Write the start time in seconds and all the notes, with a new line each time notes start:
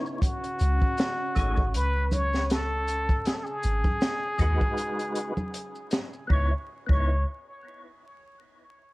Already playing: B3 C#4 D#4 E4 C#5
0.06 maracas
0.22 F#4, kick, closed hi-hat, maracas
0.44 closed hi-hat
0.59 C#2, closed hi-hat, maracas
0.81 kick, maracas
0.97 snare, closed hi-hat, maracas
1.35 G#1 A3 D#4 G#4 C#5, kick, closed hi-hat, maracas
1.57 kick, maracas
1.74 C#2 B4, closed hi-hat, maracas
2.12 C#5, closed hi-hat, low conga, maracas
2.33 snare, maracas
2.50 A4, snare, closed hi-hat, maracas
2.88 closed hi-hat, maracas
3.09 kick, maracas
3.25 G#4, snare, closed hi-hat, maracas
3.34 A4
3.43 G#4, maracas
3.63 G#1, closed hi-hat, maracas
3.84 kick, low conga, maracas
4.01 snare, closed hi-hat, maracas
4.38 D#2 G#3 D#4 F#4, kick, closed hi-hat, maracas
4.42 B4
4.61 kick, maracas
4.77 closed hi-hat, maracas
4.99 closed hi-hat, maracas
5.15 closed hi-hat, maracas
5.37 low conga, maracas
5.53 closed hi-hat, maracas
5.75 maracas
5.91 snare, closed hi-hat, maracas
6.13 maracas
6.27 C#2 B3 D#4 C#5, kick
6.31 E4 C#5
6.86 C#2 B3 D#4 C#5, kick
6.91 E4 C#5